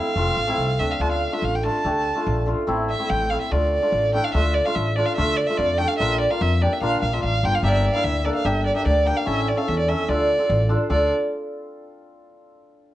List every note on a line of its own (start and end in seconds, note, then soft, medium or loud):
0.00 0.81 F5 loud
0.16 0.28 F1 loud
0.16 0.32 A3 medium
0.16 0.32 C4 medium
0.16 0.33 F4 medium
0.37 0.56 A1 medium
0.47 0.63 A3 medium
0.47 0.63 C4 medium
0.47 0.64 E4 medium
0.57 0.77 C2 medium
0.79 0.98 D2 medium
0.79 0.90 A3 medium
0.79 0.90 C4 medium
0.79 0.90 D4 medium
0.79 0.93 E5 medium
0.91 1.03 F5 medium
0.99 1.25 D2 medium
0.99 1.16 A3 medium
0.99 1.16 D4 medium
0.99 1.17 F4 medium
0.99 1.11 A5 loud
1.12 1.35 F5 medium
1.32 1.48 A3 medium
1.32 1.48 D4 medium
1.32 1.48 F4 medium
1.32 1.46 E5 medium
1.42 1.67 A1 loud
1.42 1.57 F5 medium
1.55 1.65 G5 medium
1.64 1.74 A3 medium
1.64 1.75 D4 medium
1.64 1.75 F4 medium
1.64 2.45 A5 loud
1.85 2.10 D2 medium
1.85 2.00 A3 medium
1.85 2.01 D4 medium
1.85 2.01 G4 medium
2.15 2.31 A3 medium
2.15 2.32 D4 medium
2.15 2.32 F4 medium
2.27 2.52 A#1 loud
2.46 2.57 A3 medium
2.46 2.58 D4 medium
2.46 2.58 F4 medium
2.67 2.93 A1 medium
2.67 2.83 A3 loud
2.67 2.84 C4 medium
2.67 2.84 E4 loud
2.90 3.11 E5 medium
2.99 3.15 A3 medium
2.99 3.15 C4 medium
2.99 3.16 E4 medium
3.09 3.35 A1 loud
3.09 3.31 G5 loud
3.30 3.41 A3 medium
3.30 3.42 C4 medium
3.30 3.42 E4 medium
3.30 3.41 F5 loud
3.41 3.53 E5 medium
3.51 3.76 D2 loud
3.51 3.67 A3 medium
3.51 3.67 D4 medium
3.51 3.68 F4 medium
3.51 4.14 D5 medium
3.82 3.98 A3 medium
3.82 3.98 D4 medium
3.82 3.99 F4 medium
3.92 4.17 A1 loud
4.13 4.24 A3 medium
4.13 4.25 D4 medium
4.13 4.25 E4 medium
4.13 4.26 G5 loud
4.24 4.33 F5 loud
4.34 4.59 D2 loud
4.34 4.50 A3 medium
4.34 4.50 D4 medium
4.34 4.51 F4 medium
4.34 4.56 E5 loud
4.54 4.67 D5 medium
4.65 4.81 A3 medium
4.65 4.81 D4 medium
4.65 4.82 F4 medium
4.65 4.77 F5 loud
4.75 5.01 A1 loud
4.75 4.97 E5 loud
4.96 5.07 A3 medium
4.96 5.07 D4 medium
4.96 5.08 F4 medium
4.96 5.07 D5 medium
5.05 5.16 F5 medium
5.16 5.42 D2 loud
5.16 5.33 A3 medium
5.16 5.33 D4 medium
5.16 5.33 F4 medium
5.16 5.38 E5 loud
5.36 5.48 D5 medium
5.47 5.64 A3 medium
5.47 5.64 D4 medium
5.47 5.64 F4 medium
5.47 5.59 E5 loud
5.58 5.83 F2 loud
5.58 5.79 D5 loud
5.78 5.89 A3 medium
5.78 5.89 D4 medium
5.78 5.90 G4 medium
5.78 5.89 G5 loud
5.88 5.98 F5 medium
5.98 6.25 A#1 medium
5.98 6.15 A#3 medium
5.98 6.15 D4 medium
5.98 6.16 F4 medium
5.98 6.18 E5 loud
6.20 6.32 D5 medium
6.30 6.46 A#3 medium
6.30 6.46 D4 medium
6.30 6.46 F4 medium
6.30 6.43 F5 medium
6.41 6.65 F2 loud
6.41 6.63 E5 medium
6.61 6.71 A#3 medium
6.61 6.72 D4 medium
6.61 6.72 G4 medium
6.61 6.74 D5 medium
6.73 6.82 E5 medium
6.81 6.94 A#1 medium
6.81 6.97 A#3 medium
6.81 6.97 D4 medium
6.81 6.98 F4 medium
6.81 7.01 F5 loud
7.02 7.21 A#1 loud
7.02 7.15 F5 medium
7.12 7.27 A#3 medium
7.12 7.28 D4 medium
7.12 7.28 F4 medium
7.12 7.23 E5 loud
7.23 7.41 A1 medium
7.23 7.46 F5 medium
7.43 7.61 G1 medium
7.43 7.53 A#3 medium
7.43 7.54 D4 medium
7.43 7.54 F4 medium
7.43 7.56 G5 loud
7.55 7.64 F5 medium
7.62 7.87 G1 loud
7.62 7.79 A#3 medium
7.62 7.79 D4 medium
7.62 7.79 G4 medium
7.62 7.68 E5 loud
7.67 7.75 D5 medium
7.74 7.85 E5 medium
7.83 7.96 D5 medium
7.93 8.09 A#3 medium
7.93 8.10 D4 medium
7.93 8.10 E4 medium
7.93 8.06 F5 loud
8.04 8.29 D2 loud
8.04 8.27 E5 loud
8.24 8.35 A#3 medium
8.24 8.35 D4 medium
8.24 8.36 A4 medium
8.24 8.35 D5 medium
8.35 8.47 F5 medium
8.44 8.70 G1 medium
8.44 8.60 A#3 medium
8.44 8.60 D4 medium
8.44 8.61 G4 medium
8.44 8.65 E5 loud
8.66 8.75 D5 medium
8.74 8.91 A#3 medium
8.74 8.91 D4 medium
8.74 8.91 G4 medium
8.74 8.86 E5 medium
8.86 9.10 D2 loud
8.86 9.08 D5 medium
9.05 9.16 A#3 medium
9.05 9.16 D4 medium
9.05 9.17 G4 medium
9.05 9.19 G5 loud
9.17 9.29 F5 medium
9.26 9.51 A1 medium
9.26 9.42 C#4 medium
9.26 9.42 E4 medium
9.26 9.42 A4 medium
9.26 9.50 E5 loud
9.48 9.59 D5 medium
9.56 9.72 C#4 medium
9.56 9.73 E4 medium
9.56 9.73 A4 medium
9.56 9.70 F5 medium
9.68 9.93 E2 loud
9.68 9.78 E5 medium
9.79 9.90 D5 medium
9.88 9.98 C#4 medium
9.88 9.99 E4 medium
9.88 9.99 A4 medium
9.88 10.11 E5 medium
10.09 10.33 D2 medium
10.09 10.24 D4 medium
10.09 10.25 F4 medium
10.09 10.25 A4 medium
10.09 10.70 D5 medium
10.38 10.54 D4 medium
10.38 10.55 F4 medium
10.38 10.55 A4 medium
10.50 10.74 A1 loud
10.69 10.80 D4 medium
10.69 10.80 F4 medium
10.69 10.81 A4 medium
10.90 11.10 D2 loud
10.90 11.09 D4 medium
10.90 11.09 F4 medium
10.90 11.09 A4 medium
10.90 11.10 D5 medium